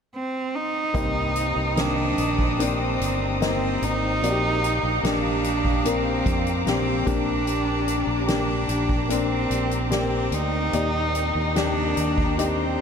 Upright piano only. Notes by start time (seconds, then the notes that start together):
0.94 G2 A#3 C4 D#4
1.76 D#3 A#3 C4
2.59 A#3 C4 D4
3.41 A#3 C4 D#4
4.23 A#3 F#4 D5
4.30 G4
5.04 A#3 D4 G4
5.85 A#3 D4 A#4
6.66 A#3 D4 G4
7.06 A#2 A#3 D4 G4
8.27 A#3 D4 G4
9.09 A#3 D4 A#4
9.90 A#3 G4 D5
10.73 A#2 D#4 G4 D5
11.55 D#3 D4 G4
12.38 D4 D#4 G4